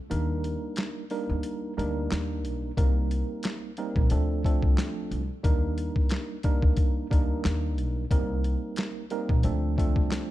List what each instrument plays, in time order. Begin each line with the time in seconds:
0.10 upright bass D#2, tine electric piano G3 A#3 D4 D#4 A#4, closed hi-hat
0.44 closed hi-hat
0.76 snare, clap, closed hi-hat
1.10 tine electric piano G3 A#3 D4 D#4 A#4, open hi-hat
1.29 upright bass D2
1.43 closed hi-hat
1.77 upright bass D2, tine electric piano G3 A#3 D4 D#4 A#4, closed hi-hat
2.11 upright bass D#2, snare, clap, closed hi-hat
2.45 upright bass B1, closed hi-hat
2.77 upright bass C2, tine electric piano G3 A#3 C4 D#4 A#4, kick, closed hi-hat
3.11 closed hi-hat
3.43 snare, clap, closed hi-hat
3.77 tine electric piano G3 A#3 C4 D#4 A#4, closed hi-hat
3.96 upright bass A#1, kick
4.10 upright bass D2, tine electric piano F3 A3 C4 D4 A4, closed hi-hat
4.45 tine electric piano F3 A3 C4 D4 A4, kick, closed hi-hat
4.62 upright bass C2, kick
4.78 snare, clap, closed hi-hat
5.11 upright bass C2, closed hi-hat
5.43 upright bass D#2, tine electric piano G3 A#3 D4 D#4 A#4, kick, closed hi-hat
5.78 closed hi-hat
5.96 kick
6.09 snare, clap, closed hi-hat
6.43 tine electric piano G3 A#3 D4 D#4 A#4, kick, closed hi-hat
6.62 upright bass D2, kick
6.77 kick, closed hi-hat
7.11 upright bass D2, tine electric piano G3 A#3 D4 D#4 A#4, kick, closed hi-hat
7.45 upright bass D#2, snare, clap, closed hi-hat
7.78 upright bass B1, closed hi-hat
8.11 upright bass C2, tine electric piano G3 A#3 C4 D#4 A#4, kick, closed hi-hat
8.44 closed hi-hat
8.76 snare, clap, closed hi-hat
9.10 tine electric piano G3 A#3 C4 D#4 A#4, closed hi-hat
9.29 upright bass A#1, kick
9.43 upright bass D2, tine electric piano F3 A3 C4 D4 A4, closed hi-hat
9.77 tine electric piano F3 A3 C4 D4 A4, kick, closed hi-hat
9.96 upright bass C2, kick
10.12 snare, clap, closed hi-hat